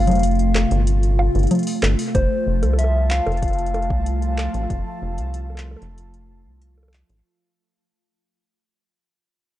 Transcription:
Already playing: C3 A3 F4 F5
0.07 F1, closed hi-hat, low conga
0.10 closed hi-hat, low conga
0.13 closed hi-hat, low conga
0.15 low conga
0.18 closed hi-hat, low conga
0.23 closed hi-hat
0.27 closed hi-hat
0.31 closed hi-hat
0.35 closed hi-hat
0.39 closed hi-hat
0.55 clap, high bongo
0.71 G1, closed hi-hat
0.87 closed hi-hat
1.03 closed hi-hat
1.19 high bongo
1.35 G1, closed hi-hat
1.39 closed hi-hat
1.43 closed hi-hat
1.47 closed hi-hat
1.51 closed hi-hat, low conga
1.55 closed hi-hat
1.59 closed hi-hat
1.63 closed hi-hat, open hi-hat
1.83 G1, clap, high bongo
1.99 open hi-hat
2.15 F1 F3 A3 F4 C5 A5, kick, closed hi-hat
2.47 F1
2.63 C2, closed hi-hat, high bongo
2.73 high bongo
2.79 E5, closed hi-hat
2.84 high bongo
3.11 F5, clap
3.26 F1, closed hi-hat, high bongo
3.32 closed hi-hat
3.37 closed hi-hat
3.42 kick, closed hi-hat
3.48 closed hi-hat
3.53 closed hi-hat
3.58 closed hi-hat
3.66 closed hi-hat
3.74 closed hi-hat, high bongo
3.82 closed hi-hat
3.90 C2, kick
4.06 closed hi-hat
4.22 closed hi-hat
4.38 clap, high bongo
4.54 A1, closed hi-hat
4.70 F1, kick, closed hi-hat
5.02 F1
5.18 C2, closed hi-hat
5.34 closed hi-hat
5.50 high bongo
5.55 clap, high bongo
5.61 high bongo
5.66 high bongo
5.71 high bongo
5.77 high bongo
5.82 F1, closed hi-hat
5.98 closed hi-hat
6.14 closed hi-hat
6.46 C2
6.62 closed hi-hat
6.78 high bongo
6.83 high bongo
6.88 high bongo
6.94 clap, closed hi-hat
7.09 A1, closed hi-hat

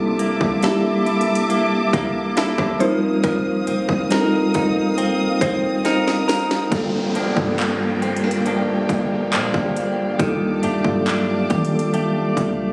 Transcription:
Already playing: C2 C3 G3 A#3 D4 E4 A4 E5 G5 A5 D6
0.19 A#3, closed hi-hat
0.41 C2, kick
0.61 G3 A#3 D4 E4 A4, snare, closed hi-hat
0.66 G4
1.06 E4, closed hi-hat
1.21 closed hi-hat
1.35 closed hi-hat
1.50 A#3, closed hi-hat
1.93 C2 A#3, kick, closed hi-hat
2.37 A#3 E4 A4, snare, closed hi-hat
2.58 F1, kick, cross-stick
2.79 F3 G3 C4 D#4 F4 C5 F5 D#6, closed hi-hat
2.83 A#4
3.24 F1 F3 A#4, kick, closed hi-hat
3.67 F1 C4, closed hi-hat
3.89 F1, kick
4.10 G3 C4 D#4 F4 A#4, snare, closed hi-hat
4.14 A4
4.20 A#4
4.33 C2
4.54 F1 D#4, kick, closed hi-hat
4.98 C2 C4, closed hi-hat
5.20 F1
5.41 F1 C4 C5, kick, closed hi-hat
5.85 C4 D#4 A#4, snare, closed hi-hat
6.08 snare
6.28 A#4, snare, open hi-hat
6.51 snare
6.70 G1 G2 G3 A#3 D4 F4 G4 F5 G5, kick, closed hi-hat, downlifter
6.75 A4
7.15 F3 A#3 D4, closed hi-hat
7.35 G2 G3 A#3 D4 F4, kick
7.40 A4
7.58 A#3, clap, closed hi-hat
8.02 C4, closed hi-hat
8.17 closed hi-hat
8.23 G3 A#3 D4 F4
8.27 A#4
8.31 closed hi-hat
8.46 F3 A#3 D4, closed hi-hat
8.89 G1, kick, closed hi-hat
9.32 A#2 F3 A#3 D4, clap, closed hi-hat
9.54 G1, kick
9.77 closed hi-hat
10.18 D#2 D#3 G3 A#3 D4 F4 A5 D6, kick, closed hi-hat
10.22 A4
10.63 D#2 A3 D4 G4, closed hi-hat
10.84 G2 F#3 A#3 D4 F4, kick
10.88 G3 A4
11.06 D4, clap, closed hi-hat
11.50 D#3 G4, kick, closed hi-hat
11.65 closed hi-hat
11.70 G3 A#3 D4 F4
11.75 A4
11.79 closed hi-hat
11.93 A3 D4 G4, closed hi-hat
12.37 C#2, kick, closed hi-hat

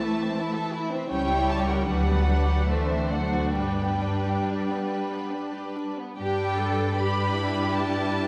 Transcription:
Already playing: E3 A3 E4 E5 A5
0.02 A3
0.21 C4
0.40 E4
0.56 A4
0.74 E4
0.91 C4
1.09 C#2 G3 C#4 E4 C#5 G5
1.28 E4
1.49 G4 A5
1.61 G5
1.66 A#4 F#5
1.77 G5
1.87 D2 F#3 G3 D4 B4 F#5
2.07 B3
2.26 D4
2.47 G4
2.67 D2 E3 A3 C5 E5
2.88 C4
3.11 F#3 D4 F#5
3.33 F#4
3.55 G2 G3 B4 G5
3.79 B3
4.01 D4
4.25 G4
4.48 D4
4.68 B3
4.91 G3
5.11 B3
5.31 D4
5.54 G4
5.76 D4
5.97 B3
6.17 G2 G3 D4 G4 B4 G5
6.58 A4
6.96 G3 D4 G4 B4 B5
7.38 E4
7.74 A5

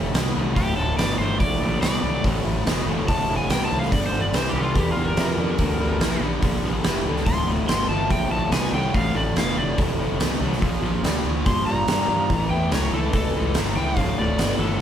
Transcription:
Already playing: F1 D2 A2
0.14 C2 D2 B2, snare, open hi-hat
0.35 C2 D2 A2
0.56 D1 D2 A2 G4, kick, open hi-hat
0.76 D1 D2 A2 A4
0.97 G1 D2 B2 D5, snare, open hi-hat
1.18 G1 D2 A2 C5
1.39 A#1 D2 A2 D5, kick, open hi-hat
1.60 A#1 D2 A2
1.81 C2 D2 B2 D5, snare, open hi-hat
2.02 C2 D2 A2
2.24 A1 D2 A2, kick, open hi-hat
2.44 A1 D2 A2
2.65 F1 D2 B2, snare, open hi-hat
2.86 F1 D2 A2
3.08 F1 D2 A2 A5, kick, open hi-hat
3.28 F1 D2 A2
3.36 G#5
3.49 C2 D2 B2 G5, snare, open hi-hat
3.65 A5
3.71 C2 D2 A2
3.79 F5, snare
3.92 G1 G2 D3 D5, kick, open hi-hat
4.06 C5
4.12 G1 G2 D3
4.21 D5
4.32 C2 G2 E3 C5, snare, open hi-hat
4.49 C2 G4
4.54 G2 D3
4.63 F4
4.74 E2 G2 D3 G4, kick, open hi-hat
4.92 F4
4.96 E2 G2 D3
5.05 A#4
5.17 F2 G2 E3, snare, open hi-hat
5.37 F2 G2 D3
5.58 D2 G2 D3, kick, open hi-hat
5.79 D2 G2 D3
6.00 A#1 G2 E3, snare, open hi-hat
6.21 A#1 G2 D3
6.42 A#1 G2 D3, kick, open hi-hat
6.63 A#1 G2 D3
6.84 F1 G2 E3, snare, open hi-hat
7.06 C#2 G2 D3
7.16 snare
7.26 D1 D2 A2 C6, kick, open hi-hat
7.47 D1 D2 A2
7.68 G1 D2 B2 C6, snare, open hi-hat
7.89 G1 D2 A2 A5
8.10 A#1 D2 A2 G5, kick, open hi-hat
8.30 A#1 D2 A2 A5
8.51 C2 D2 B2 G#5, snare, open hi-hat
8.73 C2 D2 A2 G5
8.94 A1 D2 A2 F5, kick, open hi-hat
9.14 A1 D2 A2 D5
9.35 F1 D2 B2 F5, snare, open hi-hat
9.57 F1 D2 A2 D5
9.77 F1 D2 A2, kick, open hi-hat
9.98 F1 D2 A2
10.19 C2 D2 B2, snare, open hi-hat
10.40 C2 D2 A2
10.53 snare
10.60 A#1 A#2 F3, kick, open hi-hat
10.82 A#1 A#2 F3
11.03 D2 A#2 G3, snare, open hi-hat
11.24 D2 A#2 F3
11.46 G2 A#2 F3 C6, kick, open hi-hat
11.67 G2 A#2 F3 A#5
11.87 G2 A#2 G3, snare, open hi-hat
12.09 G2 A#2 F3
12.29 A1 A2 E3, kick, open hi-hat
12.50 E2 A2 E3 G5
12.72 C#2 A2 F#3 C#5, snare, open hi-hat
12.92 C#2 A2 E3 A4
13.13 C#2 A2 E3 A4, kick, open hi-hat
13.35 C#2 A2 E3
13.54 G1 A2 F#3, snare, open hi-hat
13.76 C#2 A2 E3 G5
13.97 D1 D2 A2 F5, kick, open hi-hat
14.17 D1 D2 A2 D5
14.38 G1 D2 B2, snare, open hi-hat
14.59 G1 D2 A2 A4

